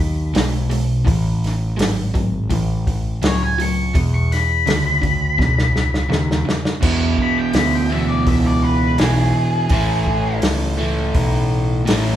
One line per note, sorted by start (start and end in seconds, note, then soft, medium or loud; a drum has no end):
0.00 0.32 D#2 medium
0.00 0.27 B2 medium
0.00 0.28 F#3 medium
0.00 0.68 B5 loud
0.34 1.05 B1 loud
0.34 0.67 B2 medium
0.34 0.67 G#3 medium
0.34 snare loud
0.34 open hi-hat medium
0.70 1.02 B2 medium
0.70 1.03 G#3 medium
0.70 open hi-hat medium
1.05 1.77 A1 medium
1.05 1.71 A2 medium
1.05 1.71 E3 medium
1.05 kick loud
1.05 open hi-hat medium
1.44 snare soft
1.44 open hi-hat soft
1.77 2.49 G#1 medium
1.77 2.10 A2 medium
1.77 2.11 F#3 medium
1.77 snare loud
1.77 open hi-hat medium
2.14 2.47 A2 medium
2.14 2.47 F#3 medium
2.14 kick medium
2.14 open hi-hat soft
2.50 3.21 A1 medium
2.50 3.15 A2 medium
2.50 3.16 E3 medium
2.50 kick medium
2.50 open hi-hat medium
2.87 kick medium
2.87 open hi-hat soft
3.22 3.93 C#2 medium
3.22 3.55 A2 medium
3.22 3.55 F#3 medium
3.22 3.42 C#5 medium
3.22 snare loud
3.22 open hi-hat medium
3.43 3.59 G#5 medium
3.58 3.91 A2 medium
3.58 3.91 F#3 medium
3.58 3.96 C#6 medium
3.58 open hi-hat medium
3.94 4.59 E2 medium
3.94 4.65 E2 medium
3.94 4.60 B2 medium
3.94 kick loud
3.94 open hi-hat medium
4.14 4.31 C#6 medium
4.32 6.44 B5 medium
4.32 snare soft
4.32 open hi-hat soft
4.66 5.37 D2 medium
4.66 4.99 E2 medium
4.66 4.99 C#3 medium
4.66 snare loud
4.66 open hi-hat medium
5.02 5.35 E2 medium
5.02 5.35 C#3 medium
5.02 kick medium
5.02 open hi-hat soft
5.38 6.09 C#2 medium
5.38 6.04 E2 medium
5.38 6.04 B2 medium
5.38 kick medium
5.38 snare medium
5.58 snare medium
5.76 snare medium
5.94 snare medium
6.09 6.44 D#2 medium
6.09 6.43 E2 medium
6.09 6.43 C#3 medium
6.09 snare medium
6.31 snare medium
6.45 6.79 E2 medium
6.45 6.79 C#3 medium
6.45 muted picked electric bass stroke soft
6.45 snare loud
6.65 snare medium
6.81 7.88 E2 medium
6.81 7.17 E2 medium
6.81 7.89 B2 loud
6.81 7.89 E3 medium
6.81 kick loud
6.81 crash loud
7.18 7.38 B5 medium
7.18 muted picked electric bass stroke soft
7.18 kick medium
7.38 7.55 G5 medium
7.53 8.25 D2 medium
7.53 7.73 B5 medium
7.53 snare loud
7.53 open hi-hat medium
7.75 7.92 G5 medium
7.90 8.97 E2 medium
7.90 8.97 B2 medium
7.90 9.01 E3 medium
7.90 8.08 E5 medium
8.08 8.26 D5 medium
8.27 8.97 C#2 medium
8.27 8.45 E5 medium
8.27 kick loud
8.27 open hi-hat medium
8.46 8.63 D5 medium
8.63 8.98 B4 medium
8.98 9.33 B1 loud
8.98 9.68 E2 medium
8.98 9.69 B2 medium
8.98 9.72 E3 medium
8.98 10.39 G#4 loud
8.98 snare loud
8.98 open hi-hat medium
9.36 muted picked electric bass stroke soft
9.69 10.41 A1 medium
9.69 10.76 A2 medium
9.69 10.79 E3 medium
9.69 10.76 A3 medium
9.69 kick loud
9.69 open hi-hat medium
10.07 kick medium
10.42 11.13 C#2 medium
10.42 snare loud
10.42 open hi-hat medium
10.77 11.84 A2 medium
10.77 11.87 E3 medium
10.77 11.84 A3 medium
11.14 11.85 B1 medium
11.14 kick loud
11.14 open hi-hat medium
11.85 12.16 A1 loud
11.85 12.16 A2 medium
11.85 12.16 E3 medium
11.85 12.16 A3 medium
11.85 snare loud
11.85 open hi-hat medium